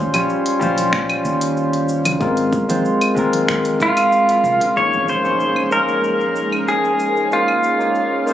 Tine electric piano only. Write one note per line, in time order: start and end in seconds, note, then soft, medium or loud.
0.00 0.14 G3 medium
0.00 0.14 C#4 medium
0.00 0.10 F4 medium
0.00 0.11 C5 loud
0.14 0.57 G3 medium
0.14 0.57 C#4 medium
0.14 0.58 F4 medium
0.14 0.58 C#5 medium
0.59 2.16 G3 medium
0.59 2.17 C#4 medium
0.59 2.18 F4 medium
0.59 2.18 C5 loud
2.20 2.65 G#3 medium
2.20 2.65 C4 medium
2.20 2.65 F4 medium
2.20 2.66 A#4 medium
2.68 3.12 G#3 medium
2.68 3.13 C4 medium
2.68 3.13 F4 medium
2.68 3.13 C5 medium
3.15 4.72 G#3 medium
3.15 4.72 C4 medium
3.15 4.73 F4 medium
3.15 4.74 A#4 loud
4.76 5.20 A#3 medium
4.76 5.21 C#4 medium
4.76 5.21 D#4 medium
4.76 5.21 G#4 medium
4.76 5.21 C#5 medium
5.24 5.68 A#3 medium
5.24 5.68 C#4 medium
5.24 5.68 D#4 medium
5.24 5.69 G#4 medium
5.24 5.69 C5 medium
5.70 7.27 A#3 medium
5.70 7.27 C#4 medium
5.70 7.28 D#4 medium
5.70 7.28 G#4 medium
5.74 7.29 C5 medium
7.32 7.76 A#3 medium
7.32 7.76 C#4 medium
7.32 7.77 D#4 medium
7.32 7.77 G#4 medium
7.32 7.77 C5 medium
7.79 8.23 A#3 medium
7.79 8.23 C#4 medium
7.79 8.23 D#4 medium
7.79 8.23 G#4 medium
7.79 8.24 C#5 medium
8.26 8.33 A#3 medium
8.26 8.33 C#4 medium
8.26 8.33 D#4 medium
8.26 8.33 G#4 medium